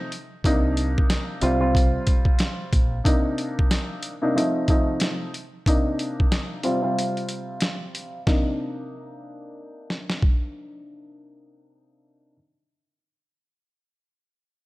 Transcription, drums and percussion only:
0.12 closed hi-hat
0.44 kick, closed hi-hat
0.77 closed hi-hat
0.98 kick
1.10 snare, closed hi-hat
1.41 closed hi-hat
1.75 kick, closed hi-hat
2.07 kick, closed hi-hat
2.25 kick
2.39 snare, closed hi-hat
2.73 kick, closed hi-hat
3.05 kick, closed hi-hat
3.38 closed hi-hat
3.59 kick
3.71 snare, closed hi-hat
4.03 closed hi-hat
4.38 closed hi-hat
4.68 kick, closed hi-hat
5.00 snare, closed hi-hat
5.34 closed hi-hat
5.66 kick, closed hi-hat
5.99 closed hi-hat
6.20 kick
6.32 snare, closed hi-hat
6.63 closed hi-hat
6.99 closed hi-hat
7.17 closed hi-hat
7.29 closed hi-hat
7.61 snare, closed hi-hat
7.95 closed hi-hat
8.27 kick, snare
9.90 snare
10.10 snare
10.22 kick

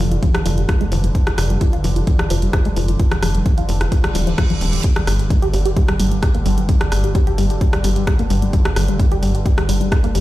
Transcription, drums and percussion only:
0.12 closed hi-hat
0.23 kick, closed hi-hat
0.35 cross-stick, closed hi-hat
0.46 open hi-hat
0.58 closed hi-hat
0.69 kick, cross-stick, closed hi-hat
0.81 closed hi-hat
0.92 open hi-hat
1.04 closed hi-hat
1.15 kick, closed hi-hat
1.27 cross-stick, closed hi-hat
1.38 cross-stick, open hi-hat
1.50 closed hi-hat
1.61 kick, closed hi-hat
1.73 closed hi-hat
1.84 open hi-hat
1.96 closed hi-hat
2.07 kick, closed hi-hat
2.19 cross-stick, closed hi-hat
2.30 open hi-hat
2.42 closed hi-hat
2.53 kick, cross-stick, closed hi-hat
2.65 closed hi-hat
2.76 open hi-hat
2.88 closed hi-hat
3.00 kick, closed hi-hat
3.12 cross-stick, closed hi-hat
3.23 cross-stick, open hi-hat
3.35 closed hi-hat
3.46 kick, closed hi-hat
3.58 closed hi-hat
3.69 open hi-hat
3.81 cross-stick, closed hi-hat
3.92 kick, closed hi-hat
4.04 cross-stick, closed hi-hat
4.15 open hi-hat
4.27 closed hi-hat
4.38 kick, cross-stick, closed hi-hat
4.50 closed hi-hat
4.61 open hi-hat
4.73 closed hi-hat
4.84 kick, closed hi-hat
4.96 cross-stick, closed hi-hat
5.07 cross-stick, open hi-hat
5.19 closed hi-hat
5.30 kick, closed hi-hat
5.42 closed hi-hat
5.54 open hi-hat
5.66 closed hi-hat
5.77 kick, closed hi-hat
5.88 cross-stick, closed hi-hat
6.00 open hi-hat
6.12 closed hi-hat
6.23 kick, cross-stick, closed hi-hat
6.35 closed hi-hat
6.46 open hi-hat
6.58 closed hi-hat
6.69 kick, closed hi-hat
6.81 cross-stick, closed hi-hat
6.92 cross-stick, open hi-hat
7.04 closed hi-hat
7.15 kick, closed hi-hat
7.27 closed hi-hat
7.38 open hi-hat
7.50 closed hi-hat
7.61 kick, closed hi-hat
7.73 cross-stick, closed hi-hat
7.84 open hi-hat
7.96 closed hi-hat
8.07 kick, cross-stick, closed hi-hat
8.19 closed hi-hat
8.30 open hi-hat
8.42 closed hi-hat
8.53 kick, closed hi-hat
8.65 cross-stick, closed hi-hat
8.76 cross-stick, open hi-hat
8.88 closed hi-hat
8.99 kick, closed hi-hat
9.12 closed hi-hat
9.23 open hi-hat
9.35 closed hi-hat
9.46 kick, closed hi-hat
9.58 cross-stick, closed hi-hat
9.69 open hi-hat
9.81 closed hi-hat
9.92 kick, cross-stick, closed hi-hat
10.04 closed hi-hat
10.15 open hi-hat

